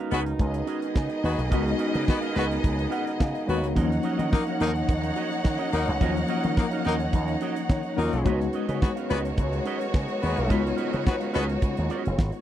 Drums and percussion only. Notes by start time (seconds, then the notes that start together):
0.11 closed hi-hat
0.26 closed hi-hat
0.39 kick, closed hi-hat
0.54 closed hi-hat
0.67 closed hi-hat
0.82 closed hi-hat
0.95 kick, snare
1.10 closed hi-hat
1.24 open hi-hat
1.39 closed hi-hat
1.52 kick, closed hi-hat
1.68 closed hi-hat
1.79 closed hi-hat
1.95 closed hi-hat
2.08 kick, snare
2.22 closed hi-hat
2.36 closed hi-hat
2.51 closed hi-hat
2.64 kick, closed hi-hat
2.79 closed hi-hat
2.92 closed hi-hat
3.07 closed hi-hat
3.20 kick, snare
3.35 closed hi-hat
3.49 closed hi-hat
3.64 closed hi-hat
3.76 kick, closed hi-hat
3.91 snare, closed hi-hat
4.03 closed hi-hat
4.19 closed hi-hat
4.33 kick, snare
4.46 closed hi-hat
4.60 closed hi-hat
4.76 closed hi-hat
4.89 kick, closed hi-hat
5.03 closed hi-hat
5.16 closed hi-hat
5.32 closed hi-hat
5.44 kick, snare
5.59 closed hi-hat
5.73 open hi-hat
5.88 closed hi-hat
6.01 kick, closed hi-hat
6.16 snare, closed hi-hat
6.28 closed hi-hat
6.43 closed hi-hat
6.57 kick, snare
6.71 closed hi-hat
6.85 closed hi-hat
7.00 closed hi-hat
7.13 kick, closed hi-hat
7.28 closed hi-hat
7.41 closed hi-hat
7.56 closed hi-hat
7.69 kick, snare
7.83 closed hi-hat
7.98 open hi-hat
8.13 closed hi-hat
8.26 kick, closed hi-hat
8.41 snare, closed hi-hat
8.53 closed hi-hat
8.69 closed hi-hat
8.82 kick, snare
8.97 closed hi-hat
9.10 closed hi-hat
9.25 closed hi-hat
9.38 kick, closed hi-hat
9.53 closed hi-hat
9.66 closed hi-hat
9.81 closed hi-hat
9.94 kick, snare
10.08 closed hi-hat
10.23 open hi-hat
10.37 closed hi-hat
10.50 kick, closed hi-hat
10.66 snare, closed hi-hat
10.78 closed hi-hat
10.93 closed hi-hat
11.07 kick, snare
11.21 closed hi-hat
11.34 closed hi-hat
11.49 closed hi-hat
11.62 kick, closed hi-hat
11.77 closed hi-hat
11.90 closed hi-hat
12.05 closed hi-hat
12.19 kick, snare
12.32 closed hi-hat